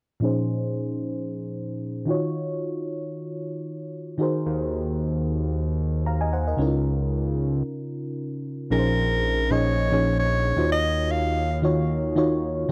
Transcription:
0.20 fm electric piano A#2 F3 C#4 D#4 G#4
0.25 fm electric piano C5
2.05 fm electric piano D#3 D#4 F4 F#4
2.10 fm electric piano C#5
4.18 fm electric piano D#3 D#4 F#4 G#4 A#4
4.23 fm electric piano C5
4.46 analog synth bass D#2
6.06 fm electric piano F5 A#5
6.21 fm electric piano D#5 G#5
6.33 fm electric piano C5 F#5
6.47 fm electric piano A#4 D#5
6.57 analog synth bass C#2, fm electric piano C#3 C#4 D#4 E4
6.62 fm electric piano A#4
6.67 fm electric piano F4
8.70 analog synth bass A#1, fm electric piano A#2 F3 C#4 D#4 G#4 A#4, soprano saxophone A#4
8.79 fm electric piano C5
9.50 fm electric piano A#2 F3 C#4 D#4 G#4 D#5, soprano saxophone C#5
9.91 fm electric piano A#2 F3 C#4 D#4 G#4 C#5
10.19 soprano saxophone C#5
10.56 analog synth bass D#2, fm electric piano D#3 D#4 F4 F#4 C5
10.65 fm electric piano C#5
10.72 soprano saxophone D#5
11.11 soprano saxophone F5
11.62 fm electric piano D#3 D#4 F4 F#4 C#5
12.16 fm electric piano D#3 D#4 F4 F#4 C#5
12.69 fm electric piano D#3

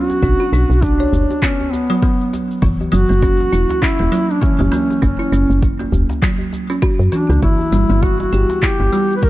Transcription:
Already playing: duduk F#4
0.10 djembe slap, shaker
0.23 fm bass B1, kalimba D4, kick, shaker
0.40 kalimba F#4, shaker
0.53 fm bass B1, kalimba D4, shaker
0.70 fm bass B1, shaker
0.82 duduk D4, kick, shaker
1.00 kalimba C#5, djembe slap, shaker
1.13 fm bass F#1, djembe bass, shaker
1.30 djembe slap, djembe tone, shaker
1.42 kalimba B3, duduk C#4, kick, clap, shaker
1.61 djembe tone, shaker
1.72 duduk B3, djembe slap, shaker
1.90 kalimba F#3, shaker
2.02 kalimba B3, kick, shaker
2.21 shaker
2.33 djembe slap, shaker
2.51 shaker
2.62 fm bass F#1, kalimba E3, kick, shaker
2.81 djembe tone, shaker
2.92 fm bass F#1, kalimba F#3, duduk F#4, shaker
3.09 fm bass F#1, kalimba A#3, shaker
3.22 kalimba C#4, kick, shaker
3.40 djembe slap, shaker
3.52 fm bass E1, kalimba E4, shaker
3.69 djembe slap, djembe tone, shaker
3.82 kalimba C#4, duduk E4, kick, clap, shaker
3.99 fm bass E1, kalimba A#3, djembe tone, shaker
4.12 kalimba F#3, shaker
4.31 duduk D4, shaker
4.42 kalimba E3, duduk C#4, kick, shaker
4.59 fm bass F#1, kalimba F#3, djembe tone, shaker
4.72 kalimba A#3, djembe tone, shaker
4.90 djembe slap, shaker
5.02 fm bass F#1, kalimba C#4, duduk C#4, kick, shaker
5.19 kalimba E4, shaker
5.32 fm bass F#1, kalimba C#4, shaker
5.50 fm bass F#1, shaker
5.62 kick, shaker
5.79 kalimba A#3, djembe slap, shaker
5.92 fm bass E1, djembe bass, shaker
6.09 djembe slap, djembe tone, shaker
6.22 kalimba F#3, kick, clap, shaker
6.39 djembe tone, shaker
6.53 djembe slap, shaker
6.70 kalimba C#4, shaker
6.82 kalimba F#4, kick, shaker
6.99 fm bass F#2, shaker
7.12 kalimba E3, duduk D4, djembe slap, shaker
7.30 fm bass C#2, kalimba A#3, shaker
7.43 fm bass G1, kalimba E3, duduk E4, kick, shaker
7.59 djembe tone, shaker
7.72 fm bass G1, kalimba G3, shaker
7.89 fm bass G1, kalimba B3, shaker
8.03 kalimba E4, duduk F#4, kick, shaker
8.20 duduk F#4, djembe slap, shaker
8.33 fm bass G1, kalimba G4, shaker
8.49 djembe slap, djembe tone, shaker
8.62 kalimba E4, duduk G4, kick, clap, shaker
8.80 fm bass G1, kalimba B3, djembe tone, shaker
8.93 kalimba G3, shaker
9.11 shaker
9.17 duduk B4
9.22 kalimba E3, duduk A#4, kick, shaker

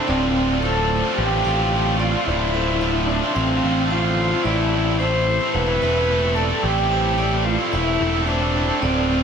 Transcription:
Already playing: distorted electric guitar A4
0.07 picked electric bass D1, distorted electric guitar D2 A2 D3 A3 C4 F4, harmonium F3 C4 D5 A5, cello C4, vibraphone D5
0.35 distorted electric guitar D3 A3 C4 F4
0.49 distorted electric guitar D3 A3 C4 F4
0.62 distorted electric guitar D2 A2 D3 A3 C4 F4, cello A4, vibraphone C5
0.76 distorted electric guitar D3 A3 C4 F4
0.89 distorted electric guitar D3 A3 C4 F4, muted distorted electric guitar stroke
1.03 distorted electric guitar D3 A3 C4 F4
1.17 picked electric bass A1, cello G4
1.31 distorted electric guitar D3 A3 C4 F4
1.44 picked electric bass A1, distorted electric guitar D3 A3 C4 F4, vibraphone F5
1.58 distorted electric guitar D3 A3 C4 F4
1.71 distorted electric guitar D2 A2 D3 A3 C4 F4
1.86 distorted electric guitar D3 A3 C4 F4
1.98 distorted electric guitar D3 A3 C4 F4, cello F4, vibraphone D5
2.13 distorted electric guitar D3 A3 C4 F4
2.25 picked electric bass D1, distorted electric guitar D2 A2 D3 A3 C4, cello E4, harmonium D5
2.29 distorted electric guitar F4
2.54 distorted electric guitar D3 A3 C4 F4, vibraphone C5
2.67 distorted electric guitar D3 A3 C4 F4
2.81 distorted electric guitar D2 A2 D3 A3 C4 F4, vibraphone E5
2.94 distorted electric guitar D3 A3 C4 F4
3.06 distorted electric guitar D3 A3 C4, cello D4, muted distorted electric guitar stroke
3.11 distorted electric guitar F4
3.21 distorted electric guitar D3 A3 C4 F4
3.34 picked electric bass A1, cello C4, vibraphone F5
3.49 distorted electric guitar D3 A3 C4 F4
3.62 picked electric bass A1, distorted electric guitar D3 A3 C4 F4
3.76 distorted electric guitar D3 A3 C4 F4
3.90 distorted electric guitar D2 A2 D3 A3 C4, cello F4, vibraphone C5
3.94 distorted electric guitar F4
4.03 distorted electric guitar D3 A3 C4 F4
4.18 distorted electric guitar D3 A3 C4 F4
4.30 distorted electric guitar D3 A3 C4 F4
4.42 picked electric bass A1, distorted electric guitar A2 E3 A3, cello E4, harmonium G4 E5, vibraphone D5
4.47 distorted electric guitar C4 E4 A4
4.72 distorted electric guitar A3 C4 E4 A4
4.85 distorted electric guitar A3 C4 E4 A4
4.98 distorted electric guitar A2 E3 A3 C4 E4, cello C5, vibraphone C5
5.02 distorted electric guitar A4
5.13 distorted electric guitar A3 C4 E4 A4
5.26 distorted electric guitar A3 C4 E4 A4, muted distorted electric guitar stroke
5.41 distorted electric guitar A3 C4 E4 A4
5.53 picked electric bass E1, cello B4
5.68 distorted electric guitar A3 C4 E4 A4
5.81 picked electric bass E1, distorted electric guitar A3 C4 E4 A4, vibraphone E5
5.95 distorted electric guitar A3 C4 E4 A4
6.08 distorted electric guitar A2 E3 A3 C4 E4 A4
6.23 distorted electric guitar A3 C4 E4 A4
6.35 distorted electric guitar A3 C4 E4 A4, cello A4, vibraphone D5
6.49 distorted electric guitar A3 C4 E4 A4
6.63 picked electric bass A1, distorted electric guitar A2 E3 A3 C4 E4 A4, cello G4
6.91 distorted electric guitar A3 C4 E4 A4, vibraphone C5
7.04 distorted electric guitar A3 C4 E4 A4
7.18 distorted electric guitar A2 E3 A3 C4 E4 A4, vibraphone D5
7.31 distorted electric guitar A3 C4 E4 A4
7.44 distorted electric guitar A3 C4 E4, cello F4, muted distorted electric guitar stroke
7.48 distorted electric guitar A4
7.58 distorted electric guitar A3 C4 E4 A4
7.72 picked electric bass E1, cello E4, vibraphone E5
7.86 distorted electric guitar A3 C4 E4 A4
7.99 picked electric bass E1, distorted electric guitar A3 C4 E4 A4
8.13 distorted electric guitar A3 C4 E4 A4
8.25 distorted electric guitar A2 E3 A3 C4 E4, cello D4, vibraphone C5
8.30 distorted electric guitar A4
8.40 distorted electric guitar A3 C4 E4 A4
8.54 distorted electric guitar A3 C4 E4 A4
8.68 distorted electric guitar A3 C4 E4 A4
8.81 picked electric bass D1, distorted electric guitar D2 A2 D3 A3 C4, cello C4, harmonium F4 D5, vibraphone D5
8.85 distorted electric guitar F4
9.08 distorted electric guitar D3 A3 C4 F4

